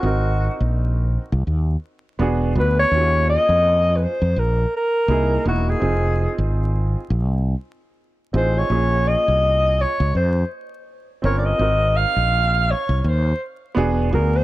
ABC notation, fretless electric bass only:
X:1
M:4/4
L:1/16
Q:"Swing 16ths" 1/4=83
K:Bbm
V:1 name="Fretless electric bass" clef=bass
A,,,3 B,,,4 C,, E,,2 z2 =E,,,2 =D,,2 | E,,3 F,,4 F,, B,,,2 z2 C,,2 =E,,,2 | F,,,3 A,,,4 B,,, C,,2 z4 =A,,,2 | B,,,3 C,,4 D,, F,,2 z4 =G,,,2 |
A,,,3 B,,,4 C,, E,,2 z2 =E,,,2 =D,,2 |]